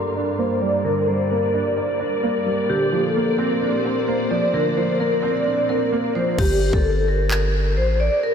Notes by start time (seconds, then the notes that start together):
Already playing: G2 D3 G3 A#3 D4 A#4 D5
0.16 D4
0.39 A#3 C5
0.61 G3 D5
0.84 D3 A#4
1.08 G3 C5
1.31 A#3 A#4
1.54 D4
1.65 D5
1.77 D5
2.00 D4 A#4
2.23 A#3
2.46 G3
2.69 A#2 D3 A#3 G4 C5
2.92 F3
3.03 A4
3.16 A#3
3.38 C4 A#4
3.61 D4
3.85 C4
4.08 A#3 C5
4.31 F3 D5
4.53 D3 A#4
4.77 F3 C5
5.00 A#3 A#4
5.23 C4
5.35 D5
5.46 D4
5.69 C4 A#4
5.92 A#3
6.15 F3 C5
6.38 G1 G4, kick, crash
6.73 G1 A4, kick
7.08 A#4
7.31 clap
7.77 A1 C5
8.00 D5
8.23 A#4